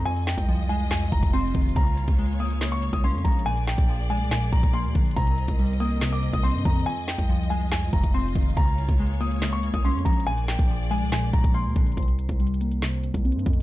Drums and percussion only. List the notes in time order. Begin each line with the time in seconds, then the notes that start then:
0.06 closed hi-hat
0.17 closed hi-hat
0.27 snare, clap, closed hi-hat
0.37 kick, closed hi-hat
0.48 closed hi-hat
0.55 closed hi-hat
0.63 closed hi-hat
0.70 closed hi-hat
0.80 closed hi-hat
0.91 snare, clap, closed hi-hat
1.02 closed hi-hat
1.12 kick, closed hi-hat
1.23 kick, closed hi-hat
1.33 closed hi-hat
1.41 closed hi-hat
1.48 closed hi-hat
1.55 kick, closed hi-hat
1.62 closed hi-hat
1.69 closed hi-hat
1.76 kick, closed hi-hat
1.87 closed hi-hat
1.98 closed hi-hat
2.08 kick, closed hi-hat
2.19 closed hi-hat
2.26 closed hi-hat
2.33 closed hi-hat
2.40 closed hi-hat
2.50 closed hi-hat
2.61 snare, clap, closed hi-hat
2.72 closed hi-hat
2.82 closed hi-hat
2.93 kick, closed hi-hat
3.04 closed hi-hat
3.11 closed hi-hat
3.18 closed hi-hat
3.25 kick, closed hi-hat
3.32 closed hi-hat
3.39 closed hi-hat
3.46 closed hi-hat
3.57 closed hi-hat
3.68 snare, clap, closed hi-hat
3.78 kick, closed hi-hat
3.89 closed hi-hat
3.96 closed hi-hat
4.03 closed hi-hat
4.10 closed hi-hat, open hi-hat
4.17 closed hi-hat
4.24 closed hi-hat
4.31 snare, clap, closed hi-hat
4.42 closed hi-hat
4.53 kick, closed hi-hat
4.63 kick, closed hi-hat
4.73 closed hi-hat
4.95 kick
5.06 closed hi-hat
5.11 closed hi-hat
5.16 kick, closed hi-hat
5.22 closed hi-hat
5.27 closed hi-hat
5.38 closed hi-hat
5.48 kick, closed hi-hat
5.59 closed hi-hat
5.66 closed hi-hat
5.73 closed hi-hat
5.80 closed hi-hat
5.91 closed hi-hat
6.01 snare, clap, closed hi-hat
6.12 closed hi-hat
6.23 closed hi-hat
6.33 kick, closed hi-hat
6.44 closed hi-hat
6.51 closed hi-hat
6.58 closed hi-hat
6.65 kick, closed hi-hat
6.72 closed hi-hat
6.80 closed hi-hat
6.87 closed hi-hat
6.97 closed hi-hat
7.08 snare, clap, closed hi-hat
7.18 kick, closed hi-hat
7.29 closed hi-hat
7.36 closed hi-hat
7.43 closed hi-hat
7.50 closed hi-hat
7.61 closed hi-hat
7.71 snare, clap, closed hi-hat
7.83 closed hi-hat
7.93 kick, closed hi-hat
8.04 kick, closed hi-hat
8.14 closed hi-hat
8.21 closed hi-hat
8.28 closed hi-hat
8.35 kick, closed hi-hat
8.43 closed hi-hat
8.50 closed hi-hat
8.57 kick, closed hi-hat
8.68 closed hi-hat
8.78 closed hi-hat
8.88 kick, closed hi-hat
8.99 closed hi-hat
9.06 closed hi-hat
9.14 closed hi-hat
9.21 closed hi-hat
9.31 closed hi-hat
9.42 snare, clap, closed hi-hat
9.53 closed hi-hat
9.63 closed hi-hat
9.74 kick, closed hi-hat
9.84 closed hi-hat
9.92 closed hi-hat
9.99 closed hi-hat
10.06 kick, closed hi-hat
10.13 closed hi-hat
10.20 closed hi-hat
10.27 closed hi-hat
10.38 closed hi-hat
10.48 snare, clap, closed hi-hat
10.59 kick, closed hi-hat
10.70 closed hi-hat
10.77 closed hi-hat
10.84 closed hi-hat
10.91 closed hi-hat, open hi-hat
10.98 closed hi-hat
11.05 closed hi-hat
11.12 snare, clap, closed hi-hat
11.23 closed hi-hat
11.33 kick, closed hi-hat
11.44 kick, closed hi-hat
11.54 closed hi-hat
11.76 kick
11.87 closed hi-hat
11.92 closed hi-hat
11.97 kick, closed hi-hat
12.03 closed hi-hat
12.08 closed hi-hat
12.19 closed hi-hat
12.29 kick, closed hi-hat
12.40 closed hi-hat
12.47 closed hi-hat
12.54 closed hi-hat
12.61 closed hi-hat
12.72 closed hi-hat
12.82 snare, clap, closed hi-hat
12.93 closed hi-hat
13.04 closed hi-hat
13.14 kick, closed hi-hat
13.25 closed hi-hat
13.32 closed hi-hat
13.39 closed hi-hat
13.46 kick, closed hi-hat
13.53 closed hi-hat